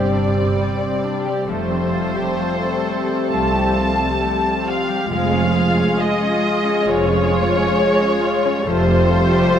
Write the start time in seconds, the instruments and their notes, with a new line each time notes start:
Already playing: double bass section G1, cello section G2, harp C3 G3 C4 G4, viola section G3 C4, french horn section G3 G4, violin section G4 C5 D5
0.14 violin section D4, harp G4
0.37 harp C4, violin section C4
0.58 violin section G3, harp G3
0.82 violin section C4, harp G4
1.04 harp C4, violin section D4
1.26 harp G3, violin section G4
1.48 double bass section F1, cello section F2, harp F3, viola section G3 C4, violin section A3 A4 C5, french horn section A3 G4
1.70 harp G3, violin section C4
1.94 violin section F4, harp A4
2.15 harp G4, violin section G4
2.38 harp G3, violin section F4
2.61 violin section C4, harp A4
2.85 violin section A3, harp G4
3.08 harp G3, violin section C4
3.32 double bass section C2, cello section C2, harp F3, violin section F4 A5
3.55 harp C4, violin section G4
3.77 violin section F4, harp A4
3.98 violin section C4, harp G4
4.22 harp G3, violin section A3
4.45 violin section C4, harp A4
4.66 violin section F4 F5, harp G4
4.89 harp G3, violin section G4
5.11 double bass section F1, cello section F2, harp F3, viola section G#3 F4, violin section G#3 G#4 F5, french horn section G#3 G#4
5.33 harp G#3, violin section C#4
5.55 violin section F4, harp G#4
5.77 violin section C#4, harp F4
6.00 violin section G#3 D#5, harp G#3
6.22 violin section C#4, harp G#4
6.44 violin section F4, harp F4
6.66 harp G#3, violin section C#4
6.87 double bass section F1, cello section F2, harp F3, violin section G#3 C#5
7.11 violin section C#4, harp F4
7.33 violin section F4, harp G#4
7.55 violin section C#4, harp F4
7.78 harp G#3, violin section G#3
8.00 violin section C#4, harp G#4
8.23 harp F4, violin section F4
8.45 harp G#3, violin section C#4
8.65 double bass section F1, cello section F2, harp F3, viola section G3 F4, french horn section A3 G4, violin section A3 A4 C5
8.88 harp G3, violin section C4
9.11 violin section F4, harp A4
9.33 violin section G4, harp G4
9.55 harp G3, violin section F4